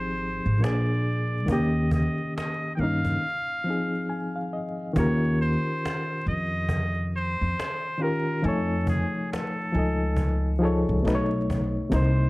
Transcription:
Already playing: G#1 F3 C4 D#4 G4 G#4 C5
0.03 cajon slap
0.18 cajon slap
0.46 G#1
0.59 A#1 A#2 A#3
0.63 D4 G#4 D5, cajon slap
0.90 cajon slap
1.05 cajon slap
1.46 D#2 D#3 A#3 D#5, cajon bass
1.50 C#4 G4
1.78 cajon slap
1.91 D#5, cajon bass
2.19 cajon slap
2.36 D#5, cajon slap
2.64 cajon slap
2.75 G2 D#3 A#3 G5, cajon slap
2.80 C#4 D#4 F5
3.05 cajon bass
3.64 F3 C4
3.68 D#4 G#4
4.09 G#5
4.36 F5
4.53 D#5
4.93 D#2 D#3 C#4 F4, cajon bass
4.98 G4 A#4 C#5
5.25 cajon slap
5.38 C5, cajon slap
5.85 cajon slap
6.12 cajon slap
6.26 F2 D#5, cajon slap
6.69 cajon bass
6.99 cajon slap
7.13 C5, cajon slap
7.40 F2, cajon slap
7.59 cajon slap
7.85 cajon slap
7.98 D#3 C#4 F4, cajon slap
8.02 G4 A#4
8.29 cajon slap
8.42 F2 F3 D#4 A4 G#5, cajon slap
8.47 A3 C#5
8.73 cajon slap
8.87 G#4, cajon bass
9.33 A4, cajon slap
9.60 cajon slap
9.72 C#2 F3 D#4 G#5, cajon slap
9.77 A4 D#5
10.17 cajon bass
10.47 cajon slap
10.59 F3 D#4 G#4, cajon slap
10.63 A4 C#5
10.88 C#2, cajon slap
11.02 B1 B2 A3
11.06 D#4 B4, cajon slap
11.15 C#5
11.33 cajon slap
11.50 cajon bass
11.77 cajon slap
11.90 C2 C3 A#3, cajon bass
11.94 D#4 C5
12.21 cajon slap

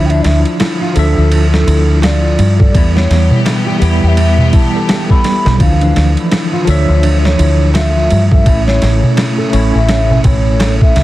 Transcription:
Already playing: D2 D3 F3 D4 E4
0.06 G5
0.10 D4 E5, ride
0.23 D2 D5, snare, ride
0.27 E5
0.45 ride
0.60 E4, snare, ride, darbuka tek
0.81 F4
0.94 D2 F3 D4 A4, ride
0.99 E5
1.18 D2
1.31 D4, ride
1.53 A4, snare
1.67 D2 E4, ride
2.02 F4 D5, snare, ride, darbuka tek
2.39 G2, ride
2.59 A4 D5, kick
2.72 E2 E3 G3 B3 G4, kick, ride
2.78 E4
2.95 B3 C#5, snare
3.10 E2, snare, ride
3.31 darbuka dum
3.45 E4, snare, ride, darbuka tek
3.67 G4
3.79 E2 G3 B3 B4, ride
3.85 E4
4.03 E2 G5
4.08 E5
4.17 B3, ride
4.38 darbuka dum
4.53 E4 A5, kick, ride
4.74 G3 B3 A4
4.88 G4, snare, ride, darbuka tek
5.09 G3 B3 A4 B5, kick
5.24 snare, ride
5.45 B1 B4, snare
5.58 D2 D3 F3 A3 D4 F5, kick, ride
5.63 E3
5.81 D4, ride
5.96 D2, snare, ride
6.17 ride
6.31 E4, snare, ride, darbuka tek
6.53 F4
6.65 D2 F3 D4 A4 C#5, ride
6.70 E5
6.89 D2
7.03 D4, ride
7.24 C#5, snare
7.38 D2 E4, ride
7.74 F4 E5, snare, ride, darbuka tek
8.10 G2, ride
8.31 A4 E5, kick
8.44 A1 C#3 A3 C#4, kick, ride
8.49 E4
8.67 C#4 C#5, snare
8.82 A1, snare, ride
9.03 darbuka dum
9.17 E4, snare, ride, darbuka tek
9.38 A4
9.50 A1 A3 C#4 C#5, ride
9.55 E4
9.75 A1 E5
9.88 C#4, snare, ride
10.10 darbuka dum
10.24 A1 E4 C#5, kick, ride
10.60 A4, snare, ride, darbuka tek
10.81 E5, kick
10.96 C#2, snare, ride

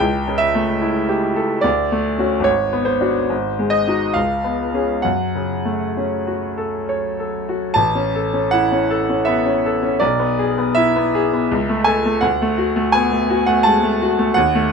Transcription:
Already playing: G5
0.00 C#2
0.28 C#3
0.38 E5
0.55 A3
0.81 E4
1.09 G4
1.36 A4
1.61 D2 D5
1.92 A3
2.18 C#4 F#4
2.40 G#1 C#5
2.73 B3
2.85 C5
3.01 D4 F#4
3.30 G#1
3.59 G#3
3.70 D#5
3.87 D#4 F#4
4.14 C#2 F5
4.44 B3
4.74 C#4 G#4
5.02 F#2 F#5
5.35 C#3
5.65 A3
5.97 C#4
6.27 F#4
6.58 A4
6.89 C#5
7.20 A4
7.49 F#4
7.74 A1 A5
7.95 C#4
8.15 A4
8.33 C#4
8.51 E4 F#5
8.72 C#4
8.91 A4
9.09 C#4
9.25 B3 E5
9.46 C#4
9.66 A4
9.83 C#4
10.00 B1 D5
10.19 B3
10.39 G#4
10.58 B3
10.75 E4 E5
10.96 B3
11.15 G#4
11.33 B3
11.51 C#2
11.69 A3
11.84 A4 G#5
12.05 A3
12.21 D2 F#5
12.42 A3
12.58 F#4
12.76 A3
12.92 B3 G#5
13.12 A3
13.30 F#4
13.46 A3 F#5
13.63 G#3 A5
13.83 A3
14.02 F#4
14.19 A3
14.34 D#2 F#5
14.55 A3

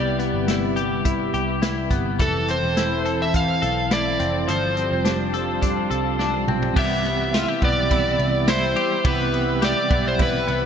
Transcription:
Already playing: C2 C3 G3 B3 E4 G4 D5
0.19 B3, closed hi-hat
0.34 G1
0.48 E4, snare, closed hi-hat
0.76 G4, closed hi-hat
1.05 E4, kick, closed hi-hat
1.34 C2 G4, closed hi-hat
1.62 E4, snare, closed hi-hat
1.91 G1 B3, kick, closed hi-hat
2.19 F1 E3 C4 A4, kick, closed hi-hat
2.48 C4 C5, closed hi-hat
2.63 E1
2.77 E4, snare, closed hi-hat
3.05 A4, closed hi-hat
3.22 E5
3.34 F5, kick, closed hi-hat
3.62 B1 A4, closed hi-hat
3.91 E4 D5, snare, closed hi-hat
4.19 F1 C4, closed hi-hat
4.48 G1 F3 G3 F4 A4 C5, closed hi-hat
4.76 C4, closed hi-hat
4.91 F1
5.05 D4, snare, closed hi-hat
5.34 A4, closed hi-hat
5.62 D4, kick, closed hi-hat
5.91 C2 A4, closed hi-hat
6.19 D4, snare
6.34 high tom
6.48 B1 C4, mid tom
6.62 floor tom
6.74 C2 C3 E3 B3 E4 G4 E5, kick, crash
6.79 G3 B3 E4 E5
7.05 B3, ride
7.34 F4, snare, ride, tambourine
7.48 G4
7.62 B1 B3 D5, kick, ride
7.89 C3 E3 G3 B3 E4, kick, ride
8.19 C2, ride
8.46 E3 G3 E4 C5, snare, ride, tambourine
8.52 E4
8.76 G4, ride
9.03 C2 C3 E3 G3 B3 E4 G4 B4, kick, ride
9.34 B3, ride
9.62 G4 D5, snare, ride, tambourine
9.89 B1 B3 E4, kick, ride
9.95 G3
10.08 C5
10.18 C3 E3 G3 B3 E4, kick, ride
10.23 B4
10.47 C2 B3, ride

